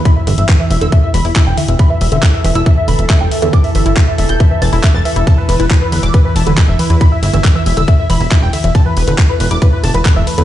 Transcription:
<<
  \new Staff \with { instrumentName = "Analog synth lead" } { \time 4/4 \key c \major \tempo 4 = 138 b''16 e''16 e''16 e''16 r16 e''16 e''16 e'''16 e''16 e''16 b''16 e''16 e''16 g''16 e''16 e''16 | b''16 e''16 e''16 e''16 r16 e''16 e''16 e'''16 e''16 e''16 b''16 e''16 e''16 g''16 e''16 e''16 | d'''16 e''16 e''16 e''16 r16 e''16 e''16 g'''16 e''16 e''16 a'''16 e''16 e''16 a'''16 e''16 e''16 | a''16 b'16 b'16 b'16 r16 b'16 b'16 d'''16 b'16 b'16 a''16 b'16 b'16 e''16 b'16 b'16 |
b''16 e''16 e''16 e''16 r16 e''16 e''16 e'''16 e''16 e''16 b''16 e''16 e''16 g''16 e''16 e''16 | a''16 b'16 b'16 b'16 r16 b'16 b'16 d'''16 b'16 b'16 a''16 b'16 b'16 e''16 b'16 b'16 | }
  \new Staff \with { instrumentName = "Ambient pad" } { \time 4/4 \key c \major <e e'>1 | a'1~ | a'1 | e'1~ |
e'1 | a1 | }
  \new Staff \with { instrumentName = "Synth arpeggio sound" } { \clef bass \time 4/4 \key c \major e'16 r16 d16 r16 e16 e16 r16 d16 r8 e16 e'16 e'16 r16 d16 r16 | e16 e16 r16 d16 r8 e16 e'16 e'16 r16 d16 r16 e16 e16 r16 d16 | r8 e16 e'16 e'16 r16 d16 r16 e16 e16 e16 e'16 r16 e16 e16 e'16 | r8 e16 e'16 e'16 r16 d16 e16 r16 e16 r16 d16 r8 e16 e'16 |
e'16 r16 d16 e16 r16 e16 r16 d16 r8 e16 e'16 e'16 r16 d16 e16 | r16 e16 r16 d16 r8 e16 e'16 e'16 r16 d16 e16 r16 e16 r16 d16 | }
  \new Staff \with { instrumentName = "Analog synth bass" } { \clef bass \time 4/4 \key c \major r8 g,,16 g,,16 r8 e,,16 e,,16 r8 e,,16 e,,16 r16 e,,16 r16 e,,16 | r8 e,,16 e,,16 r8 e,,16 e,,16 r8 e,,16 e,,16 r16 e,,16 r16 e,16 | r8 g,,16 g,,16 r8 e,,16 e,,16 r8 e,,16 e,,16 r16 e,,16 r16 e,,16 | r8 e,,16 e,,16 r8 e,,16 e,,16 r8 e,,16 e,,16 r16 e,,16 r16 e,16 |
r8 g,,16 g,,16 r8 e,,16 e,,16 r8 e,,16 e,,16 r16 e,,16 r16 e,,16 | r8 e,,16 e,,16 r8 e,,16 e,,16 r8 e,,16 e,,16 r16 e,,16 r16 e,16 | }
  \new DrumStaff \with { instrumentName = "Drums" } \drummode { \time 4/4 <hh bd>8 hho16 hh16 <hc hh bd>8 hho16 hh16 <hh bd>8 hho16 hho16 <hc hh bd>8 hho16 hh16 | <hh bd>8 hho16 hh16 <hc hh bd>8 hho16 hh16 <hh bd>8 hho16 hh16 <hc hh bd>8 hho16 hh16 | <hh bd>16 hho16 hho16 hh16 <hc hh bd>8 hho16 hh16 <hh bd>8 hho16 hho16 <hc hh bd>8 hho16 hh16 | <hh bd cymr>8 <hho cymr>16 hh16 <hc hh bd cymr>8 <hho cymr>16 hh16 <hh bd cymr>8 <hho cymr>16 hh16 <hc hh bd cymr>8 <hho cymr>16 hh16 |
<hh bd cymr>8 <hho cymr>16 hh16 <hc hh bd cymr>8 <hho cymr>16 hh16 <hh bd cymr>8 <hho cymr>16 hho16 <hc hh bd cymr>8 <hho cymr>16 hh16 | <hh bd cymr>8 <hho cymr>16 hh16 <hc hh bd cymr>8 <hho cymr>16 hh16 <hh bd cymr>8 <hho cymr>16 hh16 <hc hh bd cymr>8 <hho cymr>16 hh16 | }
>>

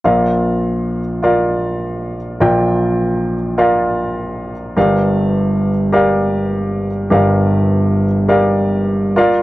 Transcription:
<<
  \new Staff \with { instrumentName = "Grand piano" } { \time 4/4 \key bes \major \tempo 4 = 102 <f' bes' d'' f''>4. r8 <f' bes' d'' f''>4. r8 | <f' bes' d'' g''>4. r8 <f' bes' d'' f''>4. r8 | <g' bes' d'' f''>4. r8 <g' bes' d'' f''>4. r8 | <g' bes' d'' f''>4. r8 <g' bes' d'' f''>4. <f' bes' d'' f''>8 | }
  \new Staff \with { instrumentName = "Grand piano" } { \clef bass \time 4/4 \key bes \major <bes,, bes,>1 | <bes,, bes,>1 | <g,, g,>1 | <g,, g,>2.~ <g,, g,>8 r8 | }
>>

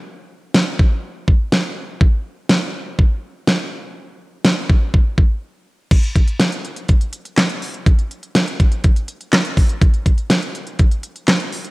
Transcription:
\new DrumStaff \with { instrumentName = "Drums" } \drummode { \time 4/4 \tempo 4 = 123 r4 sn8 bd8 r8 bd8 sn4 | bd4 sn4 bd4 sn4 | r4 sn8 bd8 bd8 bd8 r4 | <cymc hh bd>16 hh16 <hh bd>16 hh16 <hh sn>16 hh16 hh16 hh16 <hh bd>16 hh16 hh16 hh16 <hc hh sn>16 hh16 hho16 hh16 |
<hh bd>16 hh16 hh16 hh16 <hh sn>16 hh16 <hh bd>16 hh16 <hh bd>16 hh16 hh16 hh16 <hc hh sn>16 hh16 <hho bd>16 hh16 | <hh bd>16 hh16 <hh bd>16 hh16 <hh sn>16 hh16 hh16 hh16 <hh bd>16 hh16 hh16 hh16 <hc hh sn>16 hh16 hho16 hh16 | }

